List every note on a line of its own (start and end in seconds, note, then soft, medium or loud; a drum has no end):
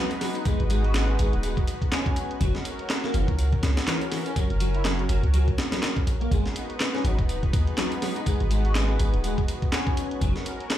0.00 2.37 G#3 medium
0.00 2.37 B3 medium
0.00 2.37 D#4 medium
0.00 6.27 F#4 medium
0.00 2.37 B4 loud
0.11 closed hi-hat soft
0.21 0.33 F#3 medium
0.21 snare medium
0.21 closed hi-hat medium
0.21 open hi-hat medium
0.35 0.45 D#4 medium
0.35 closed hi-hat soft
0.45 0.57 G#1 soft
0.45 0.59 G#3 loud
0.45 kick loud
0.45 closed hi-hat medium
0.45 closed hi-hat soft
0.60 1.17 G#1 medium
0.60 closed hi-hat soft
0.70 0.81 G#3 loud
0.70 closed hi-hat medium
0.84 0.94 F#4 medium
0.84 closed hi-hat soft
0.94 1.18 G#3 medium
0.94 snare loud
0.94 clap loud
0.94 closed hi-hat medium
0.94 closed hi-hat soft
1.19 1.31 G#1 loud
1.19 1.30 G#3 medium
1.19 closed hi-hat medium
1.33 1.65 D#1 medium
1.33 closed hi-hat soft
1.43 1.57 G#3 loud
1.43 closed hi-hat medium
1.43 closed hi-hat soft
1.57 kick loud
1.57 closed hi-hat soft
1.67 closed hi-hat medium
1.82 kick medium
1.82 closed hi-hat soft
1.92 2.40 C#4 loud
1.92 snare loud
1.92 clap loud
1.92 closed hi-hat medium
1.92 closed hi-hat soft
2.06 kick loud
2.06 closed hi-hat soft
2.16 closed hi-hat medium
2.31 closed hi-hat soft
2.41 2.53 F#1 loud
2.41 2.52 F#3 medium
2.41 6.27 C#4 medium
2.41 6.27 A#4 medium
2.41 kick loud
2.41 closed hi-hat medium
2.41 closed hi-hat soft
2.55 snare soft
2.55 closed hi-hat soft
2.65 closed hi-hat medium
2.79 closed hi-hat soft
2.90 snare loud
2.90 clap loud
2.90 closed hi-hat soft
2.90 closed hi-hat medium
3.04 3.14 A#3 loud
3.04 snare soft
3.14 3.26 F#1 loud
3.14 3.25 E3 medium
3.14 closed hi-hat medium
3.28 3.60 C#2 medium
3.28 kick loud
3.28 closed hi-hat soft
3.39 closed hi-hat medium
3.39 closed hi-hat soft
3.52 kick loud
3.52 closed hi-hat soft
3.63 3.75 C#2 medium
3.63 snare loud
3.63 closed hi-hat medium
3.77 snare loud
3.77 closed hi-hat soft
3.77 closed hi-hat medium
3.87 3.98 E3 loud
3.87 snare loud
3.87 clap loud
3.87 closed hi-hat soft
3.87 closed hi-hat medium
4.01 closed hi-hat soft
4.12 4.23 E3 medium
4.12 snare medium
4.12 closed hi-hat medium
4.12 open hi-hat medium
4.26 4.35 C#4 medium
4.26 closed hi-hat soft
4.36 4.47 F#1 soft
4.36 4.49 F#3 loud
4.36 kick loud
4.36 closed hi-hat soft
4.36 closed hi-hat medium
4.50 5.07 F#1 medium
4.50 closed hi-hat soft
4.60 4.72 F#3 loud
4.60 closed hi-hat medium
4.74 4.84 E4 medium
4.74 closed hi-hat soft
4.85 5.08 F#3 medium
4.85 snare loud
4.85 clap loud
4.85 closed hi-hat medium
4.85 closed hi-hat soft
4.99 closed hi-hat soft
5.09 5.21 F#1 loud
5.09 5.21 F#3 medium
5.09 closed hi-hat medium
5.23 5.55 C#2 medium
5.23 closed hi-hat soft
5.34 5.47 F#3 loud
5.34 closed hi-hat medium
5.34 closed hi-hat soft
5.48 kick loud
5.48 closed hi-hat soft
5.58 snare loud
5.58 closed hi-hat medium
5.72 5.82 F#3 loud
5.72 snare loud
5.72 closed hi-hat medium
5.72 closed hi-hat soft
5.83 5.95 F#3 loud
5.83 snare loud
5.83 clap loud
5.83 closed hi-hat medium
5.83 closed hi-hat soft
5.97 kick loud
5.97 closed hi-hat soft
6.07 6.28 A#1 medium
6.07 closed hi-hat medium
6.21 6.29 A#3 medium
6.21 closed hi-hat soft
6.31 6.43 G#1 loud
6.31 10.17 G#3 medium
6.31 6.43 G#3 medium
6.31 10.17 B3 medium
6.31 10.18 D#4 medium
6.31 10.78 F#4 medium
6.31 10.17 B4 loud
6.31 kick loud
6.31 closed hi-hat soft
6.31 closed hi-hat medium
6.46 snare soft
6.46 closed hi-hat soft
6.56 closed hi-hat medium
6.70 closed hi-hat soft
6.80 snare loud
6.80 clap loud
6.80 closed hi-hat soft
6.80 closed hi-hat medium
6.94 7.04 C#4 loud
6.94 snare soft
7.04 7.16 G#1 loud
7.04 7.15 F#3 medium
7.04 closed hi-hat medium
7.19 7.51 D#1 medium
7.19 kick loud
7.19 closed hi-hat soft
7.29 closed hi-hat soft
7.29 closed hi-hat medium
7.43 kick loud
7.43 closed hi-hat soft
7.53 7.65 D#2 medium
7.53 kick loud
7.53 closed hi-hat medium
7.67 closed hi-hat soft
7.78 7.89 F#3 loud
7.78 snare loud
7.78 clap loud
7.78 closed hi-hat medium
7.78 closed hi-hat soft
7.92 closed hi-hat soft
8.02 8.13 F#3 medium
8.02 snare medium
8.02 closed hi-hat medium
8.02 open hi-hat medium
8.16 8.25 D#4 medium
8.16 closed hi-hat soft
8.26 8.38 G#1 soft
8.26 8.40 G#3 loud
8.26 kick loud
8.26 closed hi-hat soft
8.26 closed hi-hat medium
8.40 8.97 G#1 loud
8.40 closed hi-hat soft
8.51 8.62 G#3 loud
8.51 closed hi-hat medium
8.65 8.74 F#4 medium
8.65 closed hi-hat soft
8.75 8.99 G#3 medium
8.75 snare loud
8.75 clap loud
8.75 closed hi-hat soft
8.75 closed hi-hat medium
8.99 9.12 G#1 medium
8.99 9.11 G#3 medium
8.99 closed hi-hat medium
9.14 9.46 D#1 medium
9.14 closed hi-hat soft
9.24 9.38 G#3 loud
9.24 closed hi-hat soft
9.24 closed hi-hat medium
9.38 kick loud
9.38 closed hi-hat soft
9.48 closed hi-hat medium
9.62 kick medium
9.62 closed hi-hat soft
9.72 10.21 C#4 loud
9.72 snare loud
9.72 clap loud
9.72 closed hi-hat medium
9.72 closed hi-hat soft
9.87 kick loud
9.87 closed hi-hat soft
9.97 closed hi-hat medium
10.11 closed hi-hat soft
10.21 10.33 F#1 loud
10.21 10.33 F#3 medium
10.21 10.78 C#4 medium
10.21 10.78 A#4 medium
10.21 kick loud
10.21 closed hi-hat medium
10.21 closed hi-hat soft
10.36 snare soft
10.36 closed hi-hat soft
10.46 closed hi-hat medium
10.60 closed hi-hat soft
10.70 snare loud
10.70 clap loud
10.70 closed hi-hat medium
10.70 closed hi-hat soft